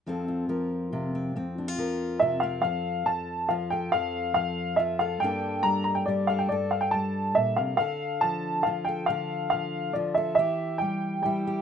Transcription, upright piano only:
\new Staff \with { instrumentName = "Upright piano" } { \time 3/4 \key f \major \tempo 4 = 139 r2. | r2 e''8 f''8 | f''4 a''4 f''8 g''8 | f''4 f''4 e''8 f''8 |
g''4 bes''8 bes''16 g''16 d''8 f''16 g''16 | d''8 f''16 g''16 a''4 e''8 f''8 | f''4 a''4 f''8 g''8 | f''4 f''4 d''8 e''8 |
e''4 g''4 g''4 | }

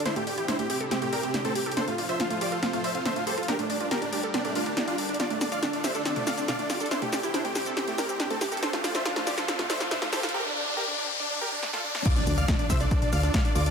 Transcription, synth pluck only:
\new Staff \with { instrumentName = "Synth pluck" } { \time 4/4 \key d \minor \tempo 4 = 140 d'16 a16 d''16 e'16 d'16 a16 g'16 a'16 c'16 a16 d''16 c'16 d'16 a16 g'16 a'16 | d'16 a16 d''16 f'16 d'16 a16 g'16 a'16 c'16 a16 d''16 c'16 d'16 a16 g'16 a'16 | d'16 a16 d''16 f'16 d'16 a16 g'16 a'16 c'16 a16 d'16 d'16 e'16 d'16 a'16 d'16 | d'16 a16 d''16 f'16 d'16 a16 g'16 a'16 c'16 a16 d''16 c'16 d'16 a16 g'16 a'16 |
d'16 a16 d''16 e'16 d'16 a16 g'16 a'16 c'16 a16 d''16 c'16 d'16 a16 g'16 a'16 | d'16 a16 d''16 f'16 d'16 a16 g'16 a'16 c'16 a16 d''16 c'16 d'16 a16 g'16 a'16 | r1 | r1 | }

